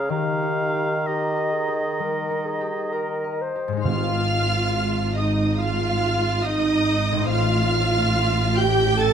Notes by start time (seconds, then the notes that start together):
Already playing: C#3 G#3 G#4 A#4 F5
0.09 D#3 G4 F5 A#5
0.42 D#4
0.74 G4
1.06 G4 D#5 A#5
1.36 D#5
1.53 G#4
1.68 G4
2.00 G3 A#4
2.30 D#4
2.45 G#4
2.61 G4
2.92 A#4 A#5
3.24 D#5
3.41 C5
3.56 G4
3.68 G#2
3.73 G#3
3.77 D#4
3.82 G#1 G#2 F4 C5 F5 F6
5.17 D#4 D#5 D#6
5.59 F4 F5 F6
6.43 D#4 D#5 D#6
7.12 A2
7.17 C4
7.21 D#4
7.26 A1 C5 F5 F6
7.30 A2 F4
8.57 G4 G5 G6
8.99 A4 A5 A6